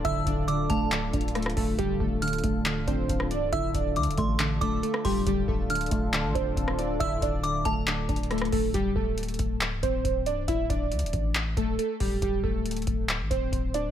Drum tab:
HH |x-----------x-----------x-----------x-----------x-----------x---x---x---x---x---x---o-----------|x-----------------------x--x--x--x--x-----------x-----------x-----------x-----------x-----------|x-----------x-----------x---x---x---x-----------x-----------x-----------x-----------o-----------|x-----------------------x--x--x--x--x-----------x-----------x-----------x-----------x-----------|
CP |------------------------------------------------x-----------------------------------------------|------------------------------------------------x-----------------------------------------------|------------------------------------------------x-----------------------------------------------|------------------------------------------------x-----------------------------------------------|
SD |------------------------------------------------------------------------r-----r-----------------|------------------------------------------------------------------------------r-----------------|------------------------------------------------------------------------------r-----------------|------------------------------------------------------------------------------r-----------------|
BD |o-----------o-----------------------o-----------------------o-----------------------o-----------|o-----------o-----------------------o-----------------------o-----------o-----------------------|o-----------o-----------------------o-----------------------o-----------------------o-----------|o-----------o-----------------------o-----------------------o-----------o-----------------------|

HH |x-----------x-----------x-----------x-----------x-----------x---x---x---x---x---x---o-----------|x-----------------------x--x--x--x--x-----------x-----------x-----------x-----------x-----------|x-----------x-----------x---x---x---x-----------x-----------x-----------x-----------o-----------|x-----------------------x--x--x--x--x-----------x-----------x-----------x-----------x-----------|
CP |------------------------------------------------x-----------------------------------------------|------------------------------------------------x-----------------------------------------------|------------------------------------------------x-----------------------------------------------|------------------------------------------------x-----------------------------------------------|
SD |------------------------------------------------------------------------r-----r-----------------|------------------------------------------------------------------------------------------------|------------------------------------------------------------------------------------------------|------------------------------------------------------------------------------------------------|
BD |o-----------o-----------------------o-----------------------o-----------------------o-----------|o-----------o-----------------------o-----------------------o-----------o-----------------------|o-----------o-----------------------o-----------------------o-----------------------o-----------|o-----------o-----------------------o-----------------------o-----------o-----------------------|